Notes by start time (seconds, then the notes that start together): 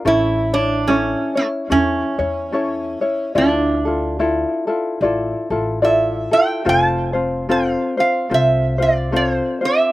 0.05 A1 C#4 E4 A4 C#5
0.53 D4 E4 C#5
0.88 C#4 E4 A4 C#5
1.35 A3 C#4 E4 C#5
1.70 E2 C#4 E4 A4 C#5
2.19 E2 C#4 E4 C#5
2.52 C#4 E4 A4 C#5
3.01 C#4 E4 C#5
3.35 D2 D4 E4 F4 A4 D5
3.85 E4 F4 A4
4.19 E4 F4 A4 D5
4.67 E4 F4 A4
5.01 A1 E4 F4 A4 D5
5.50 A1 E4 F4 A4
5.82 E4 F4 A4 D5 E5
6.31 E4 F4 A4 G5
6.65 F1 C4 F4 A4 C5
6.69 A5
7.13 C4 F4 C5
7.49 C4 F4 A4 C5 F5
7.97 C4 F4 C5 F5
8.30 C2 C4 F4 A4 C5
8.34 E5
8.78 C4 F4 C5
8.82 D5
9.12 C4 F4 A4 C5
9.16 C#5
9.34 C5
9.61 C4 F4 C5
9.65 E5